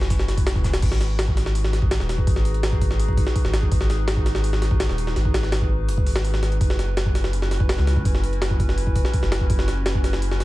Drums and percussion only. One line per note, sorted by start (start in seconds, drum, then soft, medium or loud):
0.01 snare soft
0.10 kick loud
0.10 open hi-hat medium
0.10 shaker medium
0.19 snare soft
0.19 closed hi-hat soft
0.28 snare soft
0.28 open hi-hat medium
0.28 shaker medium
0.38 kick loud
0.38 open hi-hat medium
0.47 snare loud
0.47 open hi-hat medium
0.47 shaker medium
0.56 kick medium
0.56 closed hi-hat soft
0.64 kick medium
0.64 snare loud
0.64 open hi-hat medium
0.64 shaker medium
0.74 snare loud
0.74 open hi-hat medium
0.82 kick loud
0.82 open hi-hat loud
0.82 crash loud
0.92 snare medium
1.01 snare soft
1.01 open hi-hat medium
1.19 snare loud
1.19 open hi-hat medium
1.28 kick loud
1.37 snare soft
1.37 open hi-hat medium
1.46 snare medium
1.55 open hi-hat loud
1.64 snare soft
1.73 snare soft
1.73 open hi-hat medium
1.82 kick loud
1.91 snare loud
1.91 open hi-hat medium
2.00 snare soft
2.09 snare soft
2.09 open hi-hat medium
2.18 kick medium
2.27 kick loud
2.27 open hi-hat medium
2.36 snare soft
2.45 open hi-hat medium
2.54 closed hi-hat soft
2.63 snare loud
2.63 open hi-hat medium
2.72 kick loud
2.81 kick loud
2.81 open hi-hat medium
2.91 snare soft
3.00 open hi-hat loud
3.09 kick medium
3.17 kick loud
3.17 open hi-hat medium
3.27 snare medium
3.36 kick loud
3.36 open hi-hat medium
3.45 snare soft
3.53 snare loud
3.53 open hi-hat medium
3.63 kick medium
3.72 kick loud
3.72 open hi-hat loud
3.81 snare medium
3.90 snare soft
3.90 open hi-hat medium
4.08 snare loud
4.08 open hi-hat medium
4.17 kick loud
4.26 snare soft
4.26 open hi-hat medium
4.35 snare medium
4.44 open hi-hat loud
4.53 snare medium
4.62 snare soft
4.62 open hi-hat medium
4.71 kick loud
4.80 snare loud
4.80 open hi-hat medium
4.89 snare soft
4.98 open hi-hat medium
5.07 snare soft
5.16 snare soft
5.16 open hi-hat medium
5.25 kick medium
5.34 snare loud
5.34 open hi-hat medium
5.43 snare soft
5.52 snare loud
5.52 open hi-hat medium
5.61 kick loud
5.89 open hi-hat medium
5.98 kick loud
6.07 open hi-hat medium
6.16 snare loud
6.25 open hi-hat medium
6.34 snare medium
6.43 snare soft
6.43 open hi-hat medium
6.52 closed hi-hat soft
6.61 kick loud
6.61 open hi-hat medium
6.70 snare medium
6.79 snare soft
6.79 open hi-hat medium
6.97 snare loud
6.97 open hi-hat medium
7.06 kick loud
7.15 snare soft
7.15 open hi-hat medium
7.24 snare medium
7.33 open hi-hat medium
7.42 snare medium
7.51 snare soft
7.51 open hi-hat medium
7.60 kick loud
7.69 snare loud
7.69 open hi-hat medium
7.78 snare soft
7.87 snare soft
7.87 open hi-hat medium
7.96 kick loud
8.05 kick loud
8.05 open hi-hat loud
8.15 snare soft
8.24 open hi-hat medium
8.33 closed hi-hat soft
8.42 snare loud
8.42 open hi-hat medium
8.51 kick loud
8.60 kick loud
8.60 open hi-hat medium
8.69 snare soft
8.78 open hi-hat loud
8.87 kick medium
8.96 kick loud
8.96 open hi-hat medium
9.05 snare medium
9.13 kick loud
9.13 open hi-hat medium
9.23 snare soft
9.32 snare loud
9.32 open hi-hat medium
9.41 kick medium
9.50 kick loud
9.50 open hi-hat medium
9.59 snare medium
9.68 snare soft
9.68 open hi-hat medium
9.86 snare loud
9.86 open hi-hat medium
9.95 kick medium
10.04 snare soft
10.04 open hi-hat medium
10.13 snare medium
10.22 open hi-hat loud
10.31 snare soft
10.40 snare soft
10.40 open hi-hat medium